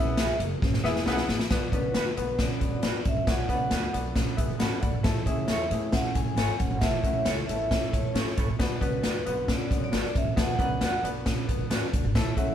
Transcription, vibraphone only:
0.00 0.37 E5 loud
1.75 2.42 B4 medium
2.41 2.74 D5 medium
2.76 3.05 D5 medium
3.08 3.30 E5 medium
3.30 3.52 F#5 loud
3.53 3.93 F#5 medium
5.28 5.96 E5 medium
5.93 6.16 F#5 medium
6.15 6.35 G#5 loud
6.37 6.60 G#5 loud
6.59 6.82 F#5 medium
6.81 7.02 E5 loud
7.03 7.27 E5 medium
7.25 7.49 C#5 medium
7.46 7.93 E5 medium
7.92 8.34 C#5 medium
8.82 9.50 B4 medium
9.50 9.76 D5 medium
9.76 9.82 C#5 medium
9.84 10.17 D5 medium
10.17 10.39 E5 medium
10.39 10.59 F#5 loud
10.62 11.02 F#5 medium
12.37 12.55 E5 medium

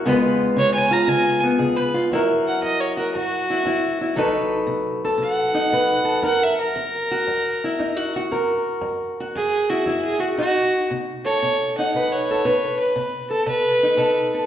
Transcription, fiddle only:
0.58 0.74 C#5 loud
0.74 0.94 G#5 loud
0.93 1.10 A#5 loud
1.09 1.42 G#5 loud
2.47 2.63 F#5 medium
2.63 2.82 D#5 medium
2.80 2.96 C#5 medium
2.98 3.14 A#4 medium
3.15 4.15 F#4 loud
5.22 6.22 F#5 loud
6.24 6.45 F#5 medium
6.43 6.59 E5 medium
6.61 8.11 A#4 loud
9.36 9.71 G#4 medium
9.69 10.02 F#4 medium
10.05 10.22 G#4 medium
10.20 10.37 F#4 medium
10.39 10.88 F#4 loud
11.25 11.74 C#5 loud
11.78 12.14 F#5 medium
12.13 12.78 C#5 medium
12.79 13.29 B4 medium
13.31 13.47 A4 medium
13.48 14.46 B4 loud

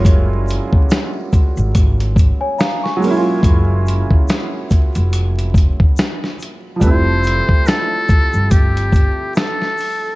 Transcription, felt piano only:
0.00 2.94 F#3 medium
0.00 6.80 G3 medium
0.00 2.95 G#3 medium
0.00 2.97 A#3 medium
0.00 2.99 C#4 medium
0.00 3.10 E4 medium
0.00 3.01 F4 medium
0.00 6.84 C#5 medium
2.97 6.33 F#3 medium
2.97 6.35 G#3 medium
3.04 6.37 A#3 medium
3.04 6.38 C#4 medium
3.10 3.13 E4 medium
3.17 6.43 F4 medium
6.76 10.13 F3 medium
6.76 10.15 G3 medium
6.83 10.15 A3 medium
6.83 10.15 C4 medium
6.90 10.15 E4 medium

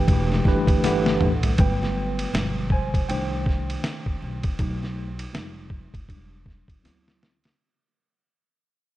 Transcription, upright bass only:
0.08 0.41 E1 loud
0.45 0.65 G1 medium
0.68 0.81 D2 loud
0.84 1.16 G1 loud
1.21 1.54 A1 medium
1.59 2.24 G1 loud
2.34 2.99 G1 loud
3.09 3.74 C2 medium
4.22 4.41 B1 medium
4.59 5.24 B1 loud
5.34 5.86 F1 loud
5.94 6.07 G1 medium
6.09 6.61 E1 medium
6.69 6.81 G1 medium
6.84 7.49 D2 medium

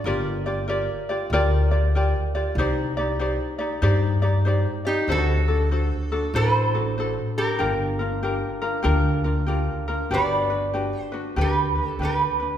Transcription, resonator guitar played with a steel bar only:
4.87 5.08 D#4 medium
4.87 5.09 G4 medium
5.11 6.32 F#4 medium
5.11 6.35 A4 medium
6.36 7.34 A4 medium
6.36 7.41 C5 loud
7.38 9.45 G4 medium
7.38 9.45 A#4 medium
10.14 11.34 B4 medium
10.14 11.01 D5 medium
11.01 11.42 C5 medium
11.41 11.98 G4 medium
11.41 11.90 B4 medium
11.90 12.03 A4 medium
12.03 12.58 G4 medium
12.03 12.58 B4 medium

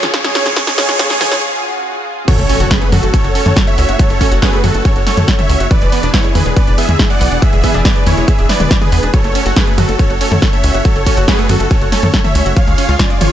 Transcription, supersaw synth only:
0.14 0.51 G#4 medium
0.14 0.51 C#5 loud
0.56 0.76 G#4 medium
0.56 0.76 C#5 loud
0.78 0.98 G#4 medium
0.78 0.98 C#5 loud
0.99 1.19 G#4 medium
0.99 1.19 C#5 loud
1.21 1.40 G#4 medium
1.21 1.41 C#5 loud
2.28 2.66 A4 medium
2.28 2.66 C#5 loud
2.71 2.90 G#4 medium
2.71 2.90 B4 medium
2.92 3.11 F#4 medium
2.92 3.11 A4 medium
3.14 3.33 A4 medium
3.14 3.33 C#5 medium
3.35 3.63 A4 medium
3.35 3.63 C#5 loud
3.67 3.96 C#5 medium
3.67 3.96 E5 loud
3.99 4.37 A4 medium
3.99 4.37 C#5 loud
4.42 4.61 G#4 medium
4.42 4.61 B4 medium
4.64 4.83 F#4 medium
4.64 4.83 A4 medium
4.85 5.04 A4 medium
4.85 5.04 C#5 medium
5.06 5.35 A4 medium
5.06 5.35 C#5 loud
5.38 5.67 C#5 medium
5.38 5.67 E5 loud
5.71 6.09 B4 medium
5.71 6.09 D5 loud
6.14 6.33 E4 medium
6.14 6.33 C#5 medium
6.35 6.54 G#4 medium
6.35 6.54 B4 medium
6.56 6.75 B4 medium
6.56 6.75 D5 loud
6.78 7.06 G#4 medium
6.78 7.06 E5 loud
7.10 7.38 D5 medium
7.10 7.38 F#5 loud
7.42 7.80 G#4 medium
7.42 7.80 E5 loud
7.85 8.04 B4 medium
7.85 8.04 D5 medium
8.07 8.25 E4 medium
8.07 8.25 C#5 medium
8.28 8.47 G#4 medium
8.28 8.47 E5 loud
8.49 8.78 B4 medium
8.49 8.78 D5 loud
8.82 9.10 G#4 medium
8.82 9.10 B4 loud
9.14 9.51 A4 medium
9.14 9.51 C#5 loud
9.57 9.75 G#4 medium
9.57 9.75 B4 medium
9.78 9.97 F#4 medium
9.78 9.97 A4 medium
9.99 10.18 A4 medium
9.99 10.18 C#5 medium
10.21 10.49 A4 medium
10.21 10.49 C#5 loud
10.53 10.81 C#5 medium
10.53 10.81 E5 loud
10.85 11.23 A4 medium
10.85 11.23 C#5 loud
11.28 11.47 G#4 medium
11.28 11.47 B4 medium
11.49 11.68 F#4 medium
11.49 11.68 A4 medium
11.71 11.90 A4 medium
11.71 11.90 C#5 medium
11.92 12.20 A4 medium
11.92 12.20 C#5 loud
12.24 12.53 C#5 medium
12.24 12.53 E5 loud
12.56 12.94 C#5 medium
12.56 12.94 F5 loud
12.99 13.18 F4 medium
12.99 13.18 D5 medium
13.21 13.32 F4 medium
13.21 13.32 C#5 medium

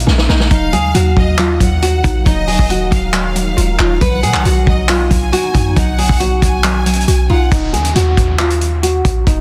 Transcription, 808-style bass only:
0.07 0.28 A#1 loud
0.29 0.50 A#1 loud
0.51 0.74 D#1 loud
0.73 0.94 D#2 loud
0.95 1.16 D#2 loud
1.17 1.59 D#2 loud
1.60 2.02 D#2 loud
2.04 2.25 A#1 loud
2.26 2.58 D#1 loud
2.59 2.91 D#1 loud
2.92 3.55 D#1 loud
3.58 3.79 D#1 loud
3.79 4.00 D#1 loud
4.01 4.25 B1 loud
4.23 4.36 B2 loud
4.34 4.45 B1 loud
4.45 4.66 B1 loud
4.67 5.09 B1 loud
5.11 5.32 B1 loud
5.55 5.76 F#2 loud
5.76 6.08 B1 loud
6.09 6.41 B1 loud
6.42 7.05 B1 loud
7.08 7.29 B1 loud
7.30 7.51 B1 loud
7.52 7.75 D#1 loud
7.74 7.94 D#2 loud
7.95 8.16 D#2 loud
8.17 9.01 D#2 loud
9.05 9.26 A#1 loud
9.27 9.41 D#1 loud

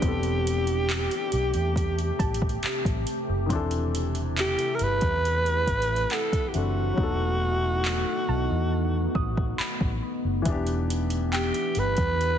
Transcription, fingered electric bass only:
0.02 1.07 E1 loud
1.33 1.51 B1 medium
1.55 2.10 E2 loud
2.20 2.57 A1 medium
2.64 muted fingered electric bass stroke soft
2.85 3.04 A1 medium
3.29 3.50 F#1 medium
3.50 4.55 E1 loud
4.81 4.99 G1 loud
5.02 5.69 E2 loud
5.67 6.04 A1 medium
6.55 6.92 F#1 medium
6.98 8.03 E1 loud
8.29 8.47 B1 medium
8.51 9.06 E2 loud
9.15 9.52 A1 medium
9.59 muted fingered electric bass stroke soft
9.81 9.99 A1 medium
10.24 10.43 F#1 medium
10.46 11.50 E1 loud
11.76 11.95 G1 medium
11.98 12.38 E2 loud

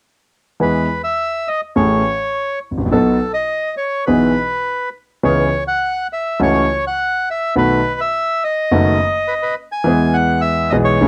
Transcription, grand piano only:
0.60 0.85 E2 medium
0.60 0.85 E3 medium
0.60 0.85 G#3 soft
0.60 0.85 B3 soft
0.60 0.85 G#4 medium
1.76 2.00 A1 medium
1.76 2.00 A2 medium
1.76 2.00 E3 soft
1.76 2.00 A3 soft
1.76 2.00 C#4 soft
1.76 2.01 G#4 medium
2.71 2.78 G#1 soft
2.77 2.85 A1 soft
2.85 2.92 A#1 medium
2.91 3.16 B1 medium
2.91 3.16 B2 medium
2.91 3.16 F#3 medium
2.91 3.16 B3 soft
2.91 3.17 D#4 soft
2.91 3.17 A4 medium
4.07 4.32 B1 medium
4.07 4.32 B2 medium
4.07 4.32 E3 medium
4.07 4.32 B3 soft
4.07 4.32 D#4 soft
4.07 4.32 G#4 medium
5.23 5.47 C#2 medium
5.23 5.47 C#3 medium
5.23 5.47 E3 medium
5.23 5.47 B3 medium
5.23 5.47 C#4 soft
5.23 5.48 G#4 medium
6.40 6.64 C#2 medium
6.40 6.63 C#3 medium
6.40 6.63 E3 soft
6.40 6.64 A3 medium
6.40 6.63 C#4 soft
6.40 6.64 F#4 medium
7.56 7.79 B1 medium
7.56 7.79 B2 medium
7.56 7.79 D#3 medium
7.56 7.79 A3 medium
7.56 7.79 B3 medium
7.56 7.79 F#4 medium
8.71 8.95 F#1 medium
8.71 8.95 F#2 medium
8.71 8.95 D#3 medium
8.71 8.95 A3 medium
8.71 8.95 B3 medium
8.71 8.95 F#4 medium
9.84 10.69 E2 medium
9.84 10.68 E3 medium
9.84 10.68 G#3 medium
9.84 10.69 B3 medium
9.84 10.70 G#4 medium
10.72 10.97 B1 medium
10.72 10.97 B2 medium
10.72 10.97 E3 medium
10.72 10.97 G#3 medium
10.72 10.97 B3 medium
10.72 10.97 G#4 medium
11.01 11.08 A1 medium
11.01 11.08 A2 medium
11.01 11.08 E3 medium
11.01 11.08 A3 medium
11.01 11.08 C#4 medium
11.01 11.08 G#4 medium

